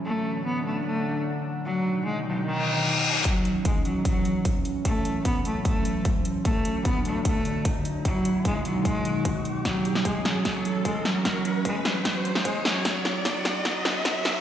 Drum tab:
HH |----------------|----------------|x-x-x-x-x-x-x-x-|x-x-x-x-x-x-x-x-|
SD |----------------|----------------|----------------|----------------|
BD |----------------|----------------|o---o---o---o---|o---o---o---o---|

HH |x-x-x-x-x-x-x-x-|x-x-x-x-x-x-x-x-|x-x-x-x-x-x-x-x-|x-x-x-x-x-x-x-x-|
SD |----------------|----------------|o--o--o-o-----o-|o-----o-o--o--o-|
BD |o---o---o---o---|o---o---o---o---|o---o---o---o---|o---o---o---o---|

HH |x-x-x-x-x-x-x-x-|
SD |o-o-o-o-o-o-o-o-|
BD |o---o---o---o---|